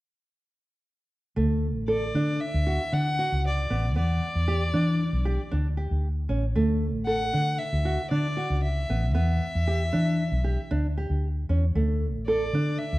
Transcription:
1.36 1.76 D2 medium
1.36 1.66 A3 medium
1.76 2.11 A1 medium
1.88 2.03 A4 medium
1.88 2.42 D5 medium
2.15 2.38 D3 medium
2.15 2.44 D4 medium
2.40 2.95 E5 medium
2.54 2.77 D2 medium
2.67 2.81 F#4 soft
2.92 3.28 D3 medium
2.92 3.07 D4 medium
2.92 3.44 F#5 medium
3.19 3.48 F#4 soft
3.32 3.67 C#2 medium
3.47 3.94 D5 medium
3.70 3.96 A1 medium
3.70 3.85 B3 medium
3.96 4.19 E2 medium
3.96 4.25 B3 medium
3.96 5.49 D5 medium
4.35 4.71 E2 medium
4.48 4.63 G4 medium
4.74 5.09 E3 medium
4.74 5.03 D4 medium
5.13 5.36 B1 medium
5.25 5.40 G4 medium
5.51 5.88 D2 medium
5.51 5.66 D4 medium
5.77 6.07 G4 medium
5.91 6.26 D2 medium
6.29 6.53 A1 medium
6.29 6.44 C#4 medium
6.56 6.95 D2 medium
6.56 6.85 A3 medium
6.95 7.30 A1 medium
7.06 7.22 A4 medium
7.06 7.60 F#5 medium
7.33 7.58 D3 medium
7.33 7.63 D4 medium
7.59 8.10 E5 medium
7.73 7.96 D2 medium
7.85 8.00 F#4 medium
8.11 8.47 D3 medium
8.11 8.26 D4 medium
8.11 8.59 D5 medium
8.37 8.67 F#4 soft
8.50 8.86 C#2 medium
8.63 9.11 E5 medium
8.90 9.14 A1 medium
8.90 9.04 B3 medium
9.14 9.39 E2 medium
9.14 9.44 B3 medium
9.14 10.67 E5 medium
9.55 9.90 E2 medium
9.67 9.82 G4 medium
9.93 10.29 E3 medium
9.93 10.22 D4 medium
10.32 10.56 B1 medium
10.44 10.59 G4 soft
10.71 11.07 D2 medium
10.71 10.86 D4 medium
10.97 11.27 G4 medium
11.10 11.46 D2 soft
11.49 11.73 E2 medium
11.49 11.64 C#4 soft
11.75 12.14 D2 medium
11.75 12.05 A3 medium
12.14 12.50 A1 medium
12.27 12.43 A4 medium
12.27 12.79 D5 medium
12.53 12.77 D3 medium
12.53 12.84 D4 medium
12.78 12.99 E5 medium
12.93 12.99 D2 medium

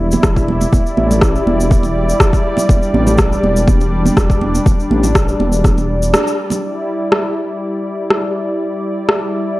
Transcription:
0.00 0.16 E1 loud
0.00 6.59 G3 medium
0.00 2.66 E4 medium
0.00 6.59 D5 medium
0.11 high conga loud
0.11 low conga medium
0.11 shaker medium
0.23 0.65 E1 medium
0.23 kick loud
0.23 cross-stick loud
0.23 muted conga soft
0.23 shaker medium
0.36 kick medium
0.36 shaker soft
0.48 high conga medium
0.48 low conga medium
0.61 muted conga medium
0.61 shaker medium
0.73 0.81 E1 loud
0.73 kick loud
0.73 high conga medium
0.73 shaker medium
0.86 shaker soft
0.97 1.39 A1 medium
0.97 high conga medium
1.11 muted conga medium
1.11 low conga medium
1.11 shaker medium
1.21 kick loud
1.21 cross-stick loud
1.21 shaker medium
1.35 shaker soft
1.47 2.13 E1 loud
1.47 high conga medium
1.60 shaker medium
1.71 kick loud
1.71 high conga medium
1.71 shaker medium
1.83 muted conga medium
1.83 shaker soft
2.09 shaker medium
2.20 kick loud
2.20 cross-stick loud
2.20 muted conga soft
2.20 shaker medium
2.33 kick medium
2.33 shaker soft
2.57 muted conga soft
2.57 low conga medium
2.57 shaker medium
2.69 2.77 E1 loud
2.69 6.59 D4 medium
2.69 kick loud
2.69 high conga medium
2.69 shaker medium
2.83 shaker soft
2.94 3.36 A1 medium
2.94 high conga loud
3.07 muted conga medium
3.07 low conga loud
3.07 shaker medium
3.18 kick loud
3.18 cross-stick loud
3.18 shaker medium
3.32 shaker soft
3.43 4.10 E1 loud
3.43 muted conga soft
3.43 high conga medium
3.56 shaker medium
3.68 kick loud
3.68 high conga loud
3.68 shaker medium
3.81 muted conga medium
3.81 shaker soft
4.06 high conga medium
4.06 low conga medium
4.06 shaker medium
4.17 4.59 E1 loud
4.17 kick loud
4.17 cross-stick loud
4.17 muted conga soft
4.17 shaker medium
4.30 kick medium
4.30 shaker soft
4.41 high conga medium
4.41 low conga medium
4.55 muted conga medium
4.55 shaker medium
4.66 4.74 E1 loud
4.66 kick loud
4.66 high conga medium
4.66 shaker medium
4.80 shaker soft
4.91 5.33 A1 medium
4.91 high conga loud
5.03 muted conga medium
5.03 low conga loud
5.03 shaker medium
5.15 kick loud
5.15 cross-stick loud
5.15 shaker medium
5.28 shaker soft
5.40 5.88 E1 loud
5.40 high conga medium
5.52 shaker medium
5.64 kick loud
5.64 cross-stick medium
5.64 high conga medium
5.64 shaker medium
5.78 muted conga medium
5.78 shaker soft
5.89 6.14 E1 medium
6.02 shaker medium
6.14 cross-stick loud
6.14 muted conga soft
6.14 shaker medium
6.27 shaker soft
6.50 muted conga medium
6.50 low conga medium
6.50 shaker medium
6.63 9.60 G3 medium
6.63 9.60 E4 medium
6.63 9.60 D5 medium
7.12 cross-stick medium
8.10 cross-stick medium
9.09 cross-stick medium

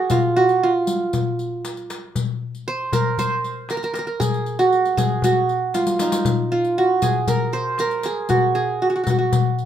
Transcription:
0.00 0.17 F#4 medium
0.00 0.80 G#4 medium
0.00 0.45 A#4 medium
0.10 0.42 F4 medium
0.10 riq medium
0.10 darbuka dum medium
0.23 darbuka ka soft
0.36 0.69 F#4 medium
0.49 riq soft
0.63 1.98 F4 medium
0.87 riq medium
1.13 riq soft
1.13 darbuka dum medium
1.39 riq soft
1.39 darbuka ka soft
1.65 riq soft
1.65 darbuka tek medium
1.77 riq soft
1.90 riq soft
1.90 darbuka tek medium
2.15 riq medium
2.15 darbuka dum medium
2.55 riq soft
2.67 3.19 C5 loud
2.67 darbuka ka soft
2.79 darbuka ka soft
2.92 3.70 A#4 medium
2.92 riq medium
2.92 darbuka dum medium
3.18 4.24 C5 loud
3.18 riq soft
3.18 darbuka dum medium
3.43 riq soft
3.43 darbuka ka soft
3.69 3.77 A#4 medium
3.69 riq soft
3.69 darbuka tek medium
3.77 3.83 A#4 medium
3.83 3.93 A#4 medium
3.83 riq soft
3.94 3.98 A#4 medium
3.94 riq soft
3.94 darbuka tek medium
3.99 4.07 A#4 medium
4.07 5.20 A#4 medium
4.20 4.97 G#4 medium
4.20 riq medium
4.20 darbuka dum medium
4.34 riq soft
4.46 riq soft
4.59 5.24 F#4 medium
4.59 riq soft
4.73 riq soft
4.85 riq soft
4.97 6.19 G#4 medium
4.97 riq medium
4.97 darbuka dum medium
5.22 5.81 F#4 medium
5.22 riq medium
5.22 darbuka dum medium
5.49 riq soft
5.49 darbuka ka soft
5.74 6.51 F4 medium
5.74 riq medium
5.74 darbuka tek medium
5.87 riq medium
5.87 darbuka ka medium
5.99 7.45 D#4 medium
5.99 riq medium
5.99 darbuka tek medium
6.12 riq medium
6.12 darbuka ka medium
6.25 riq medium
6.25 darbuka dum medium
6.38 darbuka ka soft
6.52 6.84 F4 medium
6.64 riq soft
6.78 8.08 F#4 medium
7.02 8.05 G#4 medium
7.02 riq medium
7.02 darbuka dum medium
7.27 7.79 A#4 medium
7.27 riq medium
7.27 darbuka dum medium
7.53 8.59 C5 medium
7.53 riq soft
7.53 darbuka ka soft
7.78 8.93 A#4 medium
7.78 riq soft
7.78 darbuka tek medium
7.91 riq soft
8.03 8.55 G#4 medium
8.03 riq soft
8.03 darbuka tek medium
8.29 8.82 F#4 medium
8.29 riq medium
8.29 darbuka dum medium
8.55 9.65 G#4 medium
8.82 8.89 F#4 medium
8.90 8.95 F#4 medium
8.95 9.03 F#4 medium
8.95 darbuka ka soft
9.04 9.10 F#4 medium
9.04 riq medium
9.04 darbuka dum medium
9.10 9.18 F#4 medium
9.19 9.65 F#4 soft
9.32 riq medium
9.32 darbuka dum medium
9.59 riq soft
9.59 darbuka ka soft

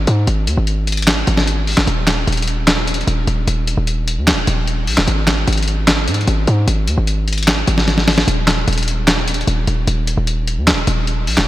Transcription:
0.07 0.27 G#2 loud
0.07 closed hi-hat medium
0.27 0.49 G#1 loud
0.27 closed hi-hat medium
0.47 0.57 D#2 loud
0.47 closed hi-hat medium
0.57 1.25 G#1 loud
0.67 closed hi-hat medium
0.87 closed hi-hat medium
0.92 closed hi-hat medium
0.97 closed hi-hat medium
1.02 closed hi-hat medium
1.07 snare loud
1.07 clap medium
1.07 closed hi-hat medium
1.27 1.75 G#1 loud
1.27 closed hi-hat medium
1.37 snare medium
1.47 closed hi-hat medium
1.67 open hi-hat medium
1.77 1.87 G#1 loud
1.77 snare medium
1.77 clap medium
1.87 2.26 D#1 loud
1.87 closed hi-hat medium
2.07 snare medium
2.07 clap medium
2.07 closed hi-hat medium
2.27 3.04 D#1 loud
2.27 closed hi-hat medium
2.32 closed hi-hat medium
2.37 closed hi-hat medium
2.42 closed hi-hat medium
2.48 closed hi-hat medium
2.67 snare loud
2.67 clap medium
2.67 closed hi-hat medium
2.87 closed hi-hat medium
2.94 closed hi-hat medium
3.01 closed hi-hat soft
3.07 3.27 D#1 loud
3.07 closed hi-hat medium
3.27 3.47 D#1 loud
3.27 closed hi-hat medium
3.47 3.76 D#1 loud
3.47 closed hi-hat medium
3.67 closed hi-hat medium
3.77 4.19 D#1 loud
3.87 closed hi-hat medium
4.08 closed hi-hat medium
4.17 4.34 D#2 loud
4.27 snare loud
4.27 clap medium
4.27 closed hi-hat medium
4.32 4.47 D#1 loud
4.47 4.89 D#1 loud
4.47 closed hi-hat medium
4.67 closed hi-hat medium
4.87 4.97 A#1 loud
4.87 open hi-hat medium
4.97 5.07 D#1 loud
4.97 snare loud
4.97 clap medium
5.08 5.46 G#1 loud
5.08 closed hi-hat medium
5.27 snare medium
5.27 clap medium
5.27 closed hi-hat medium
5.47 6.09 G#1 loud
5.47 closed hi-hat medium
5.53 closed hi-hat medium
5.57 closed hi-hat medium
5.63 closed hi-hat medium
5.68 closed hi-hat medium
5.87 snare loud
5.87 clap medium
5.87 closed hi-hat medium
6.08 6.27 G#2 loud
6.08 closed hi-hat medium
6.14 closed hi-hat medium
6.21 closed hi-hat soft
6.27 6.47 G#1 loud
6.27 closed hi-hat medium
6.47 6.67 G#2 loud
6.47 closed hi-hat medium
6.68 6.89 G#1 loud
6.68 closed hi-hat medium
6.87 6.97 D#2 loud
6.87 closed hi-hat medium
6.98 7.65 G#1 loud
7.07 closed hi-hat medium
7.28 closed hi-hat medium
7.33 closed hi-hat medium
7.38 closed hi-hat medium
7.43 closed hi-hat medium
7.47 snare loud
7.47 clap medium
7.47 closed hi-hat medium
7.67 8.25 G#1 loud
7.67 closed hi-hat medium
7.78 snare medium
7.88 snare medium
7.88 closed hi-hat medium
7.98 snare medium
8.08 snare loud
8.08 open hi-hat medium
8.18 snare medium
8.28 8.66 D#1 loud
8.28 closed hi-hat medium
8.48 snare medium
8.48 clap medium
8.48 closed hi-hat medium
8.68 9.44 D#1 loud
8.68 closed hi-hat medium
8.73 closed hi-hat medium
8.78 closed hi-hat medium
8.83 closed hi-hat medium
8.88 closed hi-hat medium
9.07 snare loud
9.07 clap medium
9.07 closed hi-hat medium
9.28 closed hi-hat medium
9.34 closed hi-hat medium
9.41 closed hi-hat soft
9.47 9.67 D#1 loud
9.47 closed hi-hat medium
9.67 9.87 D#1 loud
9.67 closed hi-hat medium
9.87 10.16 D#1 loud
9.87 closed hi-hat medium
10.07 closed hi-hat medium
10.17 10.59 D#1 loud
10.27 closed hi-hat medium
10.48 closed hi-hat medium
10.57 10.74 D#2 loud
10.67 snare loud
10.67 clap medium
10.67 closed hi-hat medium
10.72 10.87 D#1 loud
10.87 11.29 D#1 loud
10.87 closed hi-hat medium
11.07 closed hi-hat medium
11.27 11.37 A#1 loud
11.27 open hi-hat medium
11.37 11.47 D#1 loud
11.37 snare loud
11.37 clap medium

